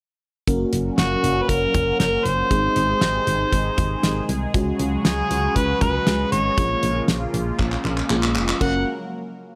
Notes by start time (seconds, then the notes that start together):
0.47 F#1 A#2 C#3 F#3 A#3 C#4 F#4 A#4, kick, closed hi-hat
0.73 F#1, closed hi-hat
0.98 F#1 F#4, snare, closed hi-hat
1.24 F#1, closed hi-hat
1.42 B4
1.49 F#1 A#4, kick, closed hi-hat
1.74 F#1, kick, closed hi-hat, mid tom
2.00 F#1 A#4, snare, closed hi-hat
2.25 F#1 C5, closed hi-hat
2.51 G#1 C3 D#3 G#3 C4 D#4 G#4, kick, closed hi-hat
2.76 G#1, closed hi-hat
3.01 G#1, snare, closed hi-hat
3.27 G#1, closed hi-hat
3.52 G#1, kick, closed hi-hat
3.78 G#1, kick, closed hi-hat, mid tom
4.03 G#1, snare, closed hi-hat
4.29 C2, closed hi-hat
4.54 C#2 C#3 F#3 G#3 C#4 F#4 G#4, kick, closed hi-hat
4.79 C#2, closed hi-hat
5.05 C#2 G#4, snare, closed hi-hat
5.31 C#2, closed hi-hat
5.56 C#2 B4, kick, closed hi-hat
5.81 C#2 B4, kick, closed hi-hat, mid tom
6.07 C#2 G#3 C#4 F#4 G#4, snare, closed hi-hat
6.32 G#1 C#5, closed hi-hat
6.58 A#1 C#3 F3 A#3 C#4 F4 G#4, kick, closed hi-hat
6.83 A#1, closed hi-hat
7.08 A#1, snare, closed hi-hat
7.34 A#1, closed hi-hat
7.59 A#1, kick, clap
7.72 clap
7.85 A#1, clap
7.97 clap
8.10 A#1 A#3 C#4 F4 G#4, clap
8.23 clap
8.36 F1, clap
8.48 clap
8.61 F#1 C#3 F#3 A#3 C#4 F#4 A#4 F#5, kick, crash